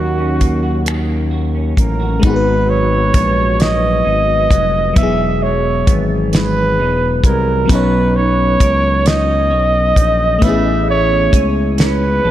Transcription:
0.00 1.74 D#2 loud
0.00 0.85 D#3 medium
0.00 2.18 F#3 medium
0.00 0.39 A#3 medium
0.00 2.19 A#3 soft
0.00 0.18 C#4 medium
0.00 2.20 C#4 soft
0.00 2.21 D#4 soft
0.00 0.63 F#4 medium
0.00 1.30 F#4 medium
0.00 2.22 A#4 medium
0.18 1.54 C#4 medium
0.40 1.08 A#3 medium
0.40 kick medium
0.40 closed hi-hat medium
0.63 0.86 F#4 medium
0.86 2.66 D#3 medium
0.86 1.31 F#4 medium
0.86 finger snap loud
0.86 closed hi-hat medium
1.09 1.76 A#3 soft
1.31 1.99 F#4 medium
1.55 2.21 C#4 soft
1.77 2.19 A1 medium
1.77 2.32 A#3 medium
1.77 2.27 A#4 medium
1.77 kick medium
1.77 closed hi-hat medium
2.00 4.97 F#4 medium
2.20 4.95 G#2 medium
2.20 4.90 G#3 medium
2.20 4.91 B3 medium
2.20 4.04 D#4 medium
2.20 kick loud
2.20 closed hi-hat medium
2.24 3.11 G#1 loud
2.24 4.93 D#4 medium
2.24 4.94 F#4 medium
2.24 2.71 B4 medium
2.30 2.33 G#4 medium
2.36 4.99 B4 medium
2.66 3.58 F#3 medium
2.66 3.63 C#5 medium
3.13 4.01 A#1 medium
3.13 5.86 B3 medium
3.13 kick medium
3.13 closed hi-hat medium
3.59 4.50 F#3 medium
3.59 4.96 D#5 loud
3.59 snare loud
3.59 closed hi-hat medium
4.04 4.47 G#1 medium
4.04 4.95 D#4 medium
4.51 4.92 F1 medium
4.51 5.06 F#3 medium
4.51 kick medium
4.51 closed hi-hat medium
4.93 5.84 E1 loud
4.93 7.68 E3 medium
4.93 7.64 F#3 medium
4.93 7.65 B3 medium
4.93 6.79 D#4 medium
4.93 5.45 E5 medium
4.93 kick loud
4.93 closed hi-hat medium
5.00 7.67 E3 medium
5.00 7.68 G#4 medium
5.41 6.31 G#3 medium
5.41 6.06 C#5 loud
5.86 6.82 G#1 loud
5.86 7.70 B3 medium
5.86 kick loud
5.86 closed hi-hat medium
6.33 7.24 G#3 medium
6.33 7.21 B4 medium
6.33 snare loud
6.33 closed hi-hat medium
6.80 7.21 E1 loud
6.80 8.16 D#4 medium
7.24 7.65 C2 medium
7.24 7.69 G#3 medium
7.24 7.72 A#4 medium
7.24 kick medium
7.24 closed hi-hat medium
7.66 10.36 F#3 medium
7.66 10.37 B3 medium
7.66 kick loud
7.70 8.56 B1 loud
7.70 10.41 B3 medium
7.70 10.38 C#4 medium
7.70 10.40 D#4 medium
7.70 8.18 B4 medium
7.70 9.50 C#5 medium
7.70 closed hi-hat medium
7.75 10.41 C#5 medium
8.16 9.05 D#4 medium
8.16 9.09 C#5 loud
8.60 9.54 C#2 medium
8.60 10.51 A#4 medium
8.60 kick loud
8.60 closed hi-hat medium
9.06 9.94 D#4 medium
9.06 10.45 D#5 loud
9.06 snare loud
9.06 closed hi-hat medium
9.50 9.93 B1 loud
9.50 10.42 C#5 medium
9.96 10.38 A#1 medium
9.96 10.51 D#4 medium
9.96 kick medium
9.96 closed hi-hat medium
10.39 11.29 A1 loud
10.39 12.31 A3 medium
10.39 12.31 B3 medium
10.39 12.24 B4 medium
10.39 kick loud
10.39 closed hi-hat medium
10.44 12.31 C#4 medium
10.44 12.31 E4 medium
10.44 10.88 E5 loud
10.49 12.31 G#4 medium
10.88 11.77 C#4 medium
10.88 11.49 C#5 loud
11.32 12.20 C#2 medium
11.32 12.31 G#4 medium
11.32 kick loud
11.32 closed hi-hat medium
11.78 12.31 C#4 medium
11.78 12.31 B4 loud
11.78 snare loud
11.78 closed hi-hat medium
12.24 12.31 A1 medium
12.24 12.31 A4 medium

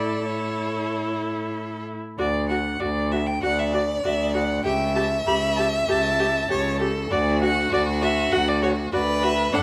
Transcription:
0.00 1.95 A2 medium
0.00 0.24 E4 medium
0.00 1.83 A4 medium
0.00 0.27 D5 medium
0.25 1.95 E4 medium
0.25 1.55 C#5 medium
2.18 2.74 D2 medium
2.18 2.27 F#4 medium
2.18 2.48 D5 loud
2.49 2.58 F#4 medium
2.49 2.82 F#5 medium
2.80 3.36 D2 medium
2.80 2.89 F#4 medium
2.80 3.13 D5 loud
3.12 3.20 F#4 medium
3.12 3.28 E5 medium
3.27 3.42 G5 loud
3.42 3.97 D2 medium
3.42 3.50 F#4 medium
3.42 4.61 D5 medium
3.42 3.60 F#5 loud
3.59 3.74 E5 loud
3.73 3.81 F#4 medium
3.73 3.82 D5 medium
4.04 4.58 D2 medium
4.04 4.12 F#4 medium
4.04 4.34 E5 loud
4.34 4.42 F#4 medium
4.34 4.64 F#5 loud
4.64 5.19 C#2 medium
4.64 4.72 G4 medium
4.64 6.46 E5 loud
4.64 4.95 G5 loud
4.95 5.03 G4 medium
4.95 5.04 A5 loud
5.26 5.81 C#2 medium
5.26 5.35 G4 medium
5.26 5.56 B5 loud
5.57 5.66 G4 medium
5.57 5.65 A5 loud
5.88 6.42 C#2 medium
5.88 5.96 G4 medium
5.88 6.79 A5 loud
6.19 6.27 G4 medium
6.49 7.04 C#2 medium
6.49 6.57 G4 medium
6.49 6.80 C#5 medium
6.80 6.88 G4 medium
6.80 7.13 A4 medium
7.11 7.65 D2 loud
7.11 7.19 F#4 medium
7.11 8.93 F#4 loud
7.11 7.39 D5 loud
7.41 7.49 F#4 medium
7.41 7.72 F#5 loud
7.71 8.25 D2 loud
7.71 7.80 F#4 medium
7.71 7.81 D5 loud
8.02 8.10 F#4 medium
8.02 8.34 E5 loud
8.32 8.86 D2 medium
8.32 8.40 F#4 medium
8.32 8.50 F#5 loud
8.49 8.62 D5 loud
8.62 8.70 F#4 medium
8.62 8.71 C#5 loud
8.92 9.46 D2 medium
8.92 9.00 F#4 medium
8.92 9.56 B4 loud
8.92 9.25 D5 loud
9.23 9.31 F#4 medium
9.23 9.53 E5 loud
9.53 9.63 F#2 loud
9.53 9.61 D4 medium
9.53 9.63 A4 loud
9.53 9.60 F#5 loud

